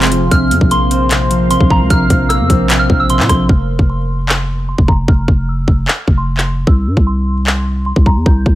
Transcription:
Already playing: 808-style bass F1, clean electric guitar C3 F3 G#3 C4, ambient pad F3 C4 G#4 F5, synth bell C6
0.02 clap, closed hi-hat
0.07 closed hi-hat
0.12 clean electric guitar F3, closed hi-hat
0.31 808-style bass A#1, clean electric guitar C3, ambient pad A#3 A#4 C5 F5, synth bell F6, kick, closed hi-hat
0.51 808-style bass F2, clean electric guitar F3, closed hi-hat
0.61 808-style bass A#1, kick
0.71 clean electric guitar A#3, synth bell C6, closed hi-hat
0.91 clean electric guitar C4, closed hi-hat
1.11 clean electric guitar C3, clap, closed hi-hat
1.31 clean electric guitar F3, closed hi-hat
1.51 clean electric guitar C3, synth bell C6, closed hi-hat
1.60 808-style bass A#1, kick
1.70 clean electric guitar F3, synth bell A#5, kick
1.80 808-style bass C#2
1.90 808-style bass A#1, clean electric guitar C3, synth bell F6, kick, closed hi-hat
2.10 808-style bass A#1, clean electric guitar F3, kick, closed hi-hat
2.29 clean electric guitar A#3, synth bell E6, cross-stick, closed hi-hat
2.40 808-style bass F2
2.50 808-style bass A#1, clean electric guitar C4, kick, closed hi-hat
2.70 clean electric guitar C3, clap, closed hi-hat
2.79 synth bell F6
2.90 808-style bass A#1, clean electric guitar F3, kick
3.00 synth bell E6
3.09 clean electric guitar C3, synth bell C6, closed hi-hat
3.19 808-style bass A#2, clap
3.29 808-style bass A#1, clean electric guitar F3, synth bell C6, kick, cross-stick, closed hi-hat
3.49 808-style bass F1, synth bell F6, kick
3.79 808-style bass F1, kick
3.90 synth bell C6
4.29 clap
4.69 synth bell C6
4.78 808-style bass F1, kick
4.88 808-style bass F1, synth bell A#5, kick
5.08 808-style bass F1, synth bell F6, kick
5.28 808-style bass F1, kick
5.49 synth bell E6
5.68 808-style bass F1, kick
5.88 clap
5.98 synth bell F6
6.08 808-style bass F1, kick
6.18 synth bell C6
6.37 clap
6.67 808-style bass C2, synth bell E6, kick
6.87 808-style bass G2
6.97 808-style bass C2, kick
7.07 synth bell C6
7.47 clap
7.86 synth bell C6
7.96 808-style bass C2, kick
8.06 synth bell A#5, kick
8.16 808-style bass E2
8.26 808-style bass C2, synth bell G6, kick
8.46 808-style bass C2, kick

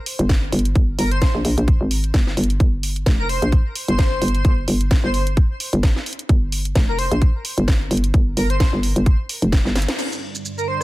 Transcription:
0.06 open hi-hat
0.19 fm bass G1, closed hi-hat
0.29 kick, snare
0.52 fm bass G1, open hi-hat
0.59 closed hi-hat
0.65 closed hi-hat
0.75 fm bass G1, kick, closed hi-hat
0.98 fm bass G1, digital synth lead A#4, open hi-hat
1.11 digital synth lead C5, closed hi-hat
1.22 digital synth lead C5, kick, snare, closed hi-hat
1.35 fm bass A#1
1.45 fm bass A#1, open hi-hat
1.58 fm bass A#1, closed hi-hat
1.68 kick, closed hi-hat
1.81 fm bass G#1
1.91 open hi-hat
2.04 closed hi-hat
2.14 fm bass G1, kick, snare, closed hi-hat
2.27 snare
2.37 fm bass G1, open hi-hat
2.44 closed hi-hat
2.50 closed hi-hat
2.60 fm bass G1, kick, closed hi-hat
2.83 open hi-hat
2.96 closed hi-hat
3.06 fm bass F1, kick, snare, closed hi-hat
3.19 digital synth lead A#4
3.29 digital synth lead C5, open hi-hat
3.42 fm bass A#1, closed hi-hat
3.52 kick, closed hi-hat
3.75 open hi-hat
3.88 fm bass G1, digital synth lead C5, closed hi-hat
3.99 kick, snare
4.22 fm bass G1, open hi-hat
4.28 closed hi-hat
4.35 closed hi-hat
4.45 fm bass G1, kick, closed hi-hat
4.68 fm bass G1, open hi-hat
4.81 closed hi-hat
4.91 kick, snare, closed hi-hat
5.04 fm bass G1, digital synth lead C5
5.14 digital synth lead C5, open hi-hat
5.27 closed hi-hat
5.37 kick, closed hi-hat
5.60 open hi-hat
5.73 fm bass G1, closed hi-hat
5.83 kick, snare, closed hi-hat
5.96 snare
6.06 open hi-hat
6.13 closed hi-hat
6.19 closed hi-hat
6.29 fm bass G1, kick, closed hi-hat
6.52 open hi-hat
6.65 closed hi-hat
6.75 fm bass F1, kick, snare, closed hi-hat
6.88 digital synth lead A#4
6.99 digital synth lead C5, open hi-hat
7.11 fm bass A#1, closed hi-hat
7.22 kick, closed hi-hat
7.45 open hi-hat
7.58 fm bass G1, closed hi-hat
7.68 kick, snare
7.91 fm bass G1, open hi-hat
7.97 closed hi-hat
8.04 closed hi-hat
8.14 fm bass G1, kick, closed hi-hat
8.37 fm bass G1, digital synth lead A#4, open hi-hat
8.50 digital synth lead C5, closed hi-hat
8.60 digital synth lead C5, kick, snare, closed hi-hat
8.73 fm bass G1
8.83 open hi-hat
8.96 fm bass G1, closed hi-hat
9.06 kick, closed hi-hat
9.29 open hi-hat
9.42 fm bass F1, closed hi-hat
9.52 kick, snare, closed hi-hat
9.65 fm bass G1, snare
9.76 snare, open hi-hat
9.82 closed hi-hat
9.88 snare, closed hi-hat
9.99 analog synth pad G3 D4 D5, crash, shaker
10.12 shaker
10.35 shaker
10.45 shaker
10.58 digital synth lead A#4, shaker
10.68 digital synth lead C5

